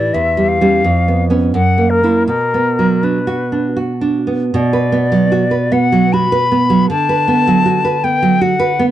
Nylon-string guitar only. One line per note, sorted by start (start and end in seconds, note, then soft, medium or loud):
0.00 0.10 A2 medium
0.00 0.14 E3 soft
0.14 0.81 E2 medium
0.37 0.60 G3 soft
0.61 0.82 G3 soft
0.61 0.82 C#4 soft
0.84 1.52 F2 medium
1.08 1.29 B3 soft
1.30 1.51 B3 soft
1.30 1.51 C#4 soft
1.54 2.26 F#2 medium
1.78 2.02 A#3 soft
2.03 2.25 A#3 soft
2.03 2.26 E4 soft
2.28 4.50 B2 soft
2.54 2.93 B3 soft
2.79 3.18 F#3 soft
3.03 3.42 D4 soft
3.27 3.67 F#4 soft
3.52 3.92 D4 soft
3.77 4.17 F#4 soft
4.01 4.43 D4 soft
4.27 4.53 B3 soft
4.54 6.85 B2 medium
4.73 5.05 B4 soft
4.92 5.24 B3 soft
5.12 5.43 F#3 soft
5.32 5.64 F#4 soft
5.51 5.84 B4 soft
5.72 6.05 B3 medium
5.92 6.25 F#3 soft
6.14 6.44 F#4 soft
6.32 6.63 B4 medium
6.52 6.82 B3 soft
6.70 6.89 F#3 soft
6.90 8.91 D3 medium
7.09 7.39 B4 medium
7.28 7.58 B3 soft
7.47 7.78 F#3 medium
7.66 7.96 F#4 medium
7.84 8.15 B4 soft
8.04 8.34 B3 medium
8.22 8.53 F#3 soft
8.41 8.72 F#4 medium
8.60 8.90 B4 medium
8.79 8.91 B3 medium